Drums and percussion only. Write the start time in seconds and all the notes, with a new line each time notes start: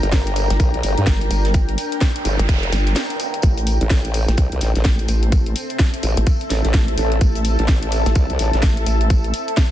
0.03 closed hi-hat
0.12 kick, snare, closed hi-hat, tambourine
0.27 closed hi-hat
0.36 open hi-hat, tambourine
0.50 snare, closed hi-hat
0.60 kick, closed hi-hat, tambourine
0.74 closed hi-hat
0.83 open hi-hat, tambourine
0.98 closed hi-hat
1.07 kick, snare, closed hi-hat, tambourine
1.21 closed hi-hat
1.30 open hi-hat, tambourine
1.45 snare, closed hi-hat
1.54 kick, closed hi-hat, tambourine
1.69 closed hi-hat
1.78 open hi-hat, tambourine
1.92 closed hi-hat
2.01 kick, snare, closed hi-hat, tambourine
2.16 closed hi-hat
2.25 open hi-hat, tambourine
2.39 closed hi-hat
2.49 kick, closed hi-hat, tambourine
2.63 closed hi-hat
2.72 snare, open hi-hat, tambourine
2.86 snare, closed hi-hat
2.96 snare, closed hi-hat, tambourine
3.10 closed hi-hat
3.20 open hi-hat, tambourine
3.34 closed hi-hat
3.42 kick, closed hi-hat, tambourine
3.58 closed hi-hat
3.67 open hi-hat, tambourine
3.81 closed hi-hat
3.90 kick, snare, closed hi-hat, tambourine
4.05 closed hi-hat
4.14 open hi-hat, tambourine
4.28 snare, closed hi-hat
4.37 kick, closed hi-hat, tambourine
4.52 closed hi-hat
4.61 snare, open hi-hat, tambourine
4.75 snare, closed hi-hat
4.85 kick, snare, closed hi-hat, tambourine
4.99 closed hi-hat
5.08 open hi-hat, tambourine
5.23 closed hi-hat
5.32 kick, closed hi-hat, tambourine
5.46 closed hi-hat
5.56 open hi-hat, tambourine
5.70 closed hi-hat
5.79 kick, snare, closed hi-hat, tambourine
5.94 closed hi-hat
6.03 open hi-hat, tambourine
6.17 closed hi-hat
6.27 kick, closed hi-hat, tambourine
6.41 closed hi-hat
6.50 snare, open hi-hat, tambourine
6.64 snare, closed hi-hat
6.74 kick, snare, closed hi-hat, tambourine
6.88 closed hi-hat
6.98 open hi-hat, tambourine
7.12 closed hi-hat
7.21 kick, closed hi-hat, tambourine
7.35 closed hi-hat
7.45 open hi-hat, tambourine
7.59 closed hi-hat
7.68 kick, snare, closed hi-hat, tambourine
7.83 closed hi-hat
7.92 open hi-hat, tambourine
8.06 snare, closed hi-hat
8.15 kick, closed hi-hat, tambourine
8.30 closed hi-hat
8.39 snare, open hi-hat, tambourine
8.53 snare, closed hi-hat
8.62 kick, snare, closed hi-hat, tambourine
8.77 closed hi-hat
8.86 open hi-hat, tambourine
9.01 closed hi-hat
9.10 kick, closed hi-hat, tambourine
9.24 closed hi-hat
9.34 open hi-hat, tambourine
9.48 closed hi-hat
9.57 kick, snare, closed hi-hat, tambourine